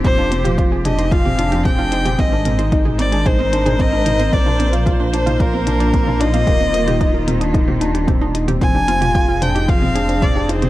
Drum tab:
HH |x-xxx-xxx-xxx-xx|x-xxx-xxx-xxx-xx|x-xxx-xxx-xxx-xx|x-xxx-xxx-xxx-xx|
T2 |o--o--o--o--o--o|--o--o--o--o--o-|-o--o--o--o--o--|o--o--o--o--o--o|
BD |o---o---o---o---|o---o---o---o---|o---o---o---o---|o---o---o---o---|

HH |x-xxx-xxx-xxx-xx|
T2 |o--o--o--o--o--o|
BD |o---o---o---o---|